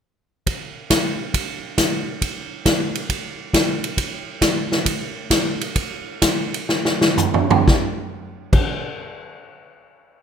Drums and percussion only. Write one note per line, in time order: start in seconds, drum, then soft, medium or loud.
0.47 kick soft
0.47 ride medium
0.90 kick soft
0.90 snare medium
0.90 hi-hat pedal medium
0.90 ride medium
1.34 kick soft
1.34 ride medium
1.78 kick soft
1.78 snare medium
1.78 hi-hat pedal medium
1.78 ride medium
2.22 kick soft
2.22 ride medium
2.66 kick soft
2.66 snare medium
2.66 hi-hat pedal medium
2.66 ride medium
2.95 ride soft
3.09 kick soft
3.09 ride medium
3.53 kick soft
3.53 snare medium
3.53 hi-hat pedal soft
3.53 ride medium
3.84 ride soft
3.97 kick soft
3.97 ride medium
4.41 kick soft
4.41 snare medium
4.41 hi-hat pedal medium
4.41 ride medium
4.72 snare soft
4.86 kick soft
4.86 ride medium
5.30 kick soft
5.30 snare medium
5.30 hi-hat pedal medium
5.30 ride medium
5.61 ride soft
5.76 kick soft
5.76 ride medium
6.22 kick soft
6.22 snare medium
6.22 hi-hat pedal medium
6.22 ride medium
6.54 ride soft
6.69 snare soft
6.85 snare medium
7.01 snare medium
7.17 floor tom medium
7.17 hi-hat pedal medium
7.34 floor tom medium
7.50 floor tom medium
7.68 kick medium
7.68 snare medium
8.53 kick medium
8.53 crash medium